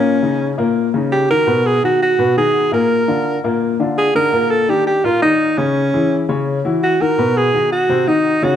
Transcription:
X:1
M:4/4
L:1/8
Q:1/4=168
K:D#phr
V:1 name="Alto saxophone"
C3 z3 =G A- | A G F F2 G2 A- | A3 z3 G A- | A =A =G G ^E D2 C- |
C3 z3 F A- | A G2 F2 _E2 _G |]
V:2 name="Upright piano"
[A,,A,A] [C,CD]2 [A,,A,A]2 [C,CD]2 [D,DF] | [B,,B,B]2 [D,DF]2 [B,,B,B] [D,DF]2 [A,,A,A]- | [A,,A,A] [=D,=D^E]2 [A,,A,A]2 [D,DE]2 [D,D^D] | [A,,A,A]2 [D,=D^D]2 [A,,A,A] [D,D=d]2 [C,Cc]- |
[C,Cc] [E,EG]2 [C,Cc]2 [E,EF]2 [D,DF] | [B,,B,B]2 [D,DF]2 [=C,=C=c] [_E,_E_G]2 [^C,^C^c] |]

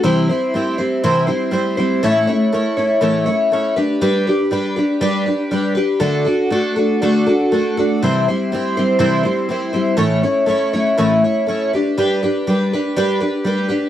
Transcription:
X:1
M:4/4
L:1/8
Q:1/4=121
K:Glyd
V:1 name="Twelve-string acoustic guitar"
[=C,E,G,=CE=c] [G,CEc] [G,CEc] [G,CEc] [C,E,G,CEc] [G,CEc] [G,CEc] [G,CEc] | [A,,E,A,CEc] [A,CEc] [A,CEc] [A,CEc] [A,,E,A,CEc] [A,CEc] [A,CEc] [DGB] | [G,DGB] [DGB] [G,DGB] [DGB] [G,DGB] [DGB] [G,DGB] [DGB] | [D,A,DFA] [DFA] [A,DFA] [DFA] [D,A,DFA] [DFA] [A,DFA] [DFA] |
[=C,E,G,=CE=c] [G,CEc] [G,CEc] [G,CEc] [C,E,G,CEc] [G,CEc] [G,CEc] [G,CEc] | [A,,E,A,CEc] [A,CEc] [A,CEc] [A,CEc] [A,,E,A,CEc] [A,CEc] [A,CEc] [DGB] | [G,DGB] [DGB] [G,DGB] [DGB] [G,DGB] [DGB] [G,DGB] [DGB] |]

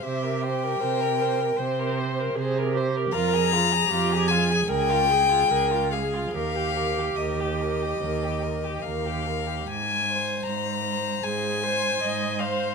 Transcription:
X:1
M:4/4
L:1/16
Q:1/4=76
K:Ab
V:1 name="Violin"
_f2 g8- g2 z4 | b6 a2 g6 f2 | f4 e8 f4 | a4 b4 a6 f2 |]
V:2 name="Violin"
c B c B c B c B c B c B c B c B | F A F A F A F A A F A F A F A F | B G B G B G B G B G B G B G B G | z2 c4 c4 c4 c2 |]
V:3 name="Viola"
G4 B4 c4 A2 G2 | B2 A2 G2 A2 B2 A2 B2 A2 | G12- G2 z2 | z8 A2 c2 e2 c2 |]
V:4 name="Cello" clef=bass
C,4 C,4 C,4 C,4 | F,,4 F,,4 D,,4 D,,4 | E,,4 E,,4 E,,4 E,,4 | A,,4 A,,4 A,,4 A,,4 |]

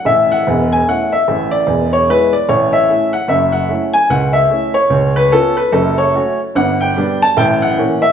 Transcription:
X:1
M:4/4
L:1/8
Q:"Swing" 1/4=148
K:A
V:1 name="Upright piano"
e f2 g f e2 d- | d c B d c e2 f | e f2 g f e2 c- | c B A B A c2 z |
[K:Glyd] f g2 a g f2 e |]
V:2 name="Upright piano" clef=bass
[A,,,A,,]2 [E,,,E,,]2 [A,CE]2 [A,,,A,,]2 | [E,,,E,,]2 [G,B,E]2 [A,,,A,,]2 [A,CE]2 | [F,,,F,,]2 [A,CE]2 [C,,C,]2 [A,CE]2 | [C,,C,]2 [B,C^E]2 [F,,,F,,]2 [A,CF]2 |
[K:Glyd] [G,,,G,,]2 [G,B,D]2 [A,,,A,,]2 [E,_B,C]2 |]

